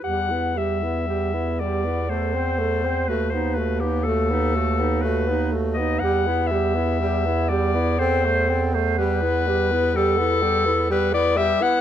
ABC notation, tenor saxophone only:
X:1
M:3/4
L:1/16
Q:1/4=61
K:Em
V:1 name="Tenor saxophone"
G, B, G, B, G, B, G, B, A, C A, C | A, B, A, B, A, B, A, B, A, B, A, B, | G, B, G, B, G, B, G, B, C A, C A, | G, B, G, B, G, B, G, B, G, B, G, B, |]